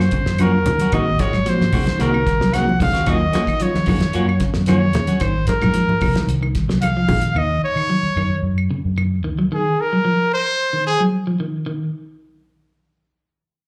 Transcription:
Already playing: trumpet C5
0.00 snare
0.11 clean electric guitar C#3, muted clean electric guitar stroke, kick, closed hi-hat
0.25 fingered electric bass F#2, snare
0.39 reed electric piano F#3 C#4 F4, clean electric guitar A#3 C#4 F#4, trumpet A#4, closed hi-hat, high conga, claves
0.65 fingered electric bass C#2, clean electric guitar D#3, muted clean electric guitar stroke, closed hi-hat, high conga, low conga
0.79 clean electric guitar F#3 C#4 F#4, closed hi-hat
0.92 fingered electric bass G#1, clean electric guitar D#3 G#3 F#4, reed electric piano A#3 C4 F#4, trumpet D#5, muted clean electric guitar stroke, kick, closed hi-hat, claves
1.08 muted clean electric guitar stroke
1.19 clean electric guitar D#3 G#3 C4 F#4, trumpet C#5, kick, snare, closed hi-hat, high conga
1.33 fingered electric bass G#2, clean electric guitar F#3, muted clean electric guitar stroke, kick, snare, claves
1.46 clean electric guitar F3, reed electric piano A#3 C4 F#4, trumpet C5, muted clean electric guitar stroke, snare, closed hi-hat, high conga
1.60 muted fingered electric bass stroke, snare, high conga
1.72 fingered electric bass C2, clean electric guitar D#3 G#3 C4 F#4, kick, open hi-hat, high conga, low conga, claves
1.87 clean electric guitar D#3, snare, closed hi-hat
1.99 fingered electric bass C2, clean electric guitar D#3 G#3 C4 F#4, reed electric piano A#3 C4 F#4, trumpet A#4, snare, closed hi-hat, high conga
2.14 clean electric guitar D#3, claves
2.26 muted clean electric guitar stroke, kick, snare, closed hi-hat
2.38 fingered electric bass C2, clean electric guitar F#3, snare
2.53 clean electric guitar D#3 G#3 C4 F#4, reed electric piano A#3 C4 F#4, trumpet F#5, snare, closed hi-hat, high conga, claves
2.67 clean electric guitar F3, muted clean electric guitar stroke, high conga
2.79 fingered electric bass C#2, clean electric guitar D#3, trumpet F5, muted clean electric guitar stroke, kick, open hi-hat, high conga, low conga
2.93 clean electric guitar G#3 C4 F#4, snare, closed hi-hat
3.06 fingered electric bass D#2, clean electric guitar D#3 A#3 C#4 F#4, reed electric piano F#3 C#4 F4, trumpet D#5, kick, snare, closed hi-hat, high conga, claves
3.20 muted clean electric guitar stroke
3.33 clean electric guitar A#3 C#4 F#4, snare, closed hi-hat, high conga
3.47 fingered electric bass D#3, kick, snare, claves
3.60 reed electric piano F#3 C#4 F4, clean electric guitar F#3, trumpet C#5, muted clean electric guitar stroke, closed hi-hat, high conga
3.74 muted fingered electric bass stroke, snare, high conga
3.86 fingered electric bass F#2, clean electric guitar D#3 A#3 C#4 F#4, kick, open hi-hat, high conga, low conga, claves
4.01 muted clean electric guitar stroke, snare, closed hi-hat
4.13 fingered electric bass F#2, reed electric piano F#3 C#4 F4, clean electric guitar A#3 C#4 F#4, closed hi-hat
4.29 muted clean electric guitar stroke, claves
4.40 clean electric guitar C#3, muted clean electric guitar stroke, kick, snare, closed hi-hat
4.54 fingered electric bass F#2, snare
4.66 clean electric guitar D#3 A#3 C#4 F#4, reed electric piano F#3 C#4 F4, trumpet C#5, snare, closed hi-hat, high conga, claves
4.82 muted clean electric guitar stroke
4.93 fingered electric bass D#2, clean electric guitar D#3, muted clean electric guitar stroke, snare, closed hi-hat, high conga, low conga
5.07 clean electric guitar F#3 C#4 F#4, closed hi-hat
5.20 fingered electric bass G#1, clean electric guitar D#3, trumpet C5, kick, snare, closed hi-hat, high conga, claves
5.47 trumpet A#4, kick, snare, closed hi-hat, high conga
5.61 fingered electric bass G#2, clean electric guitar F#3, kick, snare, low conga, claves
5.74 clean electric guitar F3, closed hi-hat, high conga
5.88 muted fingered electric bass stroke, high conga
6.01 fingered electric bass C2, kick, open hi-hat, high conga, low conga, claves
6.15 clean electric guitar D#3, snare, closed hi-hat
6.27 fingered electric bass C2, closed hi-hat, high conga
6.42 clean electric guitar D#3, claves
6.55 kick, snare, closed hi-hat
6.68 fingered electric bass C2, clean electric guitar F#3, snare
6.82 trumpet F5, closed hi-hat, high conga, claves
6.97 clean electric guitar F3
7.08 fingered electric bass A#1, clean electric guitar D#3, kick, open hi-hat, high conga, low conga
7.22 closed hi-hat
7.35 fingered electric bass D#2, clean electric guitar D#3, trumpet D#5, claves
7.62 trumpet C#5, muted fingered electric bass stroke
7.76 fingered electric bass D#3, claves
7.90 clean electric guitar F#3
8.03 muted fingered electric bass stroke
8.16 fingered electric bass F#2, clean electric guitar D#3, claves
8.42 fingered electric bass F#2
8.58 claves
8.71 clean electric guitar C#3
8.85 fingered electric bass F#2
8.98 muted clean electric guitar stroke, claves
9.24 fingered electric bass C#2, clean electric guitar D#3
9.39 clean electric guitar F#3
9.52 clean electric guitar D#3, trumpet G#4
9.81 trumpet A#4
9.93 clean electric guitar F#3
10.05 clean electric guitar F3
10.34 trumpet C5
10.73 clean electric guitar D#3
10.87 trumpet G#4
11.00 clean electric guitar F#3
11.27 clean electric guitar F3
11.40 clean electric guitar D#3
11.66 clean electric guitar D#3

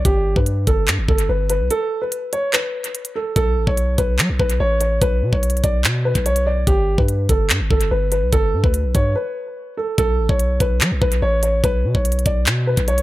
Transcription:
0.05 808-style bass G1, grand piano G4, kick, closed hi-hat
0.36 808-style bass G2, grand piano B4, kick
0.46 closed hi-hat
0.67 808-style bass G1, grand piano A4, kick, closed hi-hat
0.88 808-style bass G2, clap, closed hi-hat
0.98 808-style bass G1
1.08 808-style bass G1, grand piano A4, kick
1.18 closed hi-hat
1.29 808-style bass G1, grand piano B4
1.50 grand piano B4, closed hi-hat
1.60 808-style bass B1
1.71 grand piano A4, closed hi-hat
2.02 grand piano B4
2.12 closed hi-hat
2.33 grand piano C#5, closed hi-hat
2.53 grand piano B4, clap, closed hi-hat
2.84 closed hi-hat
2.95 closed hi-hat
3.05 closed hi-hat
3.16 grand piano A4
3.36 808-style bass B1, grand piano A4, kick, closed hi-hat
3.57 808-style bass A1
3.67 808-style bass B1, grand piano C#5, kick
3.77 closed hi-hat
3.98 808-style bass B1, grand piano B4, kick, closed hi-hat
4.19 808-style bass F#3, clap, closed hi-hat
4.29 808-style bass B1
4.39 808-style bass B1, grand piano B4, kick
4.50 closed hi-hat
4.60 808-style bass A1, grand piano C#5
4.81 grand piano C#5, closed hi-hat
5.02 808-style bass B1, grand piano B4, kick, closed hi-hat
5.22 808-style bass B2
5.33 808-style bass B1, grand piano C#5, kick
5.43 closed hi-hat
5.50 closed hi-hat
5.57 closed hi-hat
5.64 808-style bass B1, grand piano D5, kick, closed hi-hat
5.84 808-style bass B2, clap, closed hi-hat
6.05 grand piano B4
6.15 808-style bass B1, kick, closed hi-hat
6.26 grand piano C#5, closed hi-hat
6.36 closed hi-hat
6.46 grand piano D5
6.67 808-style bass G1, grand piano G4, kick, closed hi-hat
6.98 808-style bass G2, grand piano B4, kick
7.08 closed hi-hat
7.29 808-style bass G1, grand piano A4, kick, closed hi-hat
7.50 808-style bass G2, clap, closed hi-hat
7.60 808-style bass G1
7.70 808-style bass G1, grand piano A4, kick
7.81 closed hi-hat
7.91 808-style bass G1, grand piano B4
8.12 grand piano B4, closed hi-hat
8.22 808-style bass B1
8.33 808-style bass G1, grand piano A4, kick, closed hi-hat
8.53 808-style bass G2
8.64 808-style bass D2, grand piano B4, kick
8.74 closed hi-hat
8.84 808-style bass B1
8.95 808-style bass G2, grand piano C#5, kick, closed hi-hat
9.16 grand piano B4
9.77 grand piano A4
9.98 808-style bass B1, grand piano A4, kick, closed hi-hat
10.19 808-style bass A1
10.29 808-style bass B1, grand piano C#5, kick
10.39 closed hi-hat
10.60 808-style bass B1, grand piano B4, kick, closed hi-hat
10.81 808-style bass F#3, clap, closed hi-hat
10.91 808-style bass B1
11.01 808-style bass B1, grand piano B4, kick
11.12 closed hi-hat
11.22 808-style bass A1, grand piano C#5
11.43 grand piano C#5, closed hi-hat
11.64 808-style bass B1, grand piano B4, kick, closed hi-hat
11.84 808-style bass B2
11.95 808-style bass B1, grand piano C#5, kick
12.05 closed hi-hat
12.12 closed hi-hat
12.19 closed hi-hat
12.26 808-style bass B1, grand piano D5, kick, closed hi-hat
12.46 808-style bass B2, clap, closed hi-hat
12.67 grand piano B4
12.77 808-style bass B1, kick, closed hi-hat
12.88 grand piano C#5, closed hi-hat
12.98 closed hi-hat

